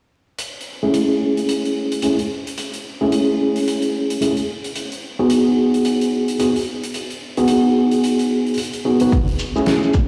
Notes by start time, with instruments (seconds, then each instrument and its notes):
0.39 closed hi-hat
0.61 closed hi-hat
0.83 tine electric piano A3 C#4 E4 G#4
0.94 closed hi-hat
1.37 closed hi-hat
1.49 closed hi-hat
1.65 closed hi-hat
1.92 closed hi-hat
2.02 tine electric piano A3 C#4 E4 G#4, closed hi-hat
2.19 closed hi-hat
2.47 closed hi-hat
2.58 closed hi-hat
2.74 closed hi-hat
3.01 tine electric piano A3 C#4 E4 G#4
3.12 closed hi-hat
3.56 closed hi-hat
3.58 closed hi-hat
3.62 closed hi-hat
3.63 closed hi-hat
3.65 closed hi-hat
3.68 closed hi-hat
3.82 closed hi-hat
4.10 closed hi-hat
4.21 tine electric piano A3 C#4 E4 G#4, closed hi-hat
4.37 closed hi-hat
4.64 closed hi-hat
4.76 closed hi-hat
4.92 closed hi-hat
5.19 tine electric piano B3 D#4 F#4 G#4
5.30 closed hi-hat
5.74 closed hi-hat
5.85 closed hi-hat
6.01 closed hi-hat
6.28 closed hi-hat
6.40 tine electric piano B3 D#4 F#4 G#4, closed hi-hat
6.56 closed hi-hat
6.59 closed hi-hat
6.62 closed hi-hat
6.64 closed hi-hat
6.84 closed hi-hat
6.94 closed hi-hat
7.11 closed hi-hat
7.37 tine electric piano B3 D#4 F#4 G#4, closed hi-hat
7.48 closed hi-hat
7.91 closed hi-hat
8.04 closed hi-hat
8.19 closed hi-hat
8.47 closed hi-hat
8.54 closed hi-hat
8.58 closed hi-hat
8.63 closed hi-hat
8.73 closed hi-hat
8.85 tine electric piano B3 D#4 F#4 G#4
9.00 tine electric piano B3 D#4 F#4 B4, closed hi-hat
9.12 kick, closed hi-hat, shekere
9.28 closed hi-hat, shekere
9.39 shekere
9.56 tine electric piano A3 C#4 E4 G#4, shekere
9.66 snare, closed hi-hat, shekere
9.83 shekere
9.94 kick, shekere